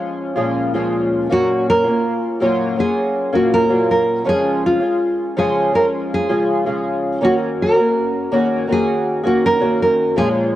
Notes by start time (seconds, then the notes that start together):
Already playing: F3 G#3 C#4 F4
0.36 A#2 F3 G#3 C#4 F4
0.74 A#2 F3 G#3 C#4 F4
1.30 A#2 F#3 A#3 C#4 F#4
1.70 A#4
1.84 A#3 C#4 F4
2.40 A#2 F#3 A#3 C#4 F4
2.76 F#3 A#3 C#4 F4 G#4
3.33 A#2 F#3 A#3 C#4 F4 F#4
3.54 A#4
3.69 A#2 F#3 A#3 C#4 F4
3.91 A#4
4.24 C#3 F3 G#3 C#4 F4
4.29 G#4
4.66 F4
4.80 G#3 C#4 F4
5.37 C#3 F3 G#3 C#4 F4 G#4
5.73 F3 G#3 C#4 F4 A#4
6.14 G#4
6.29 C#3 F3 G#3 C#4 F4
6.66 C#3 F3 G#3 C#4 F4
7.21 D#3 A#3 C#4 F#4
7.62 A#4
7.76 A#3 C#4 F#4
8.31 D#3 A#3 C#4 F#4
8.40 G#4
8.67 D#3 A#3 C#4 F#4
8.72 G#4
9.23 D#3 A#3 C#4 F#4
9.46 A#4
9.60 D#3 A#3 C#4 F#4
9.83 A#4
10.16 A#2 F3 G#3 C#4 F4 G#4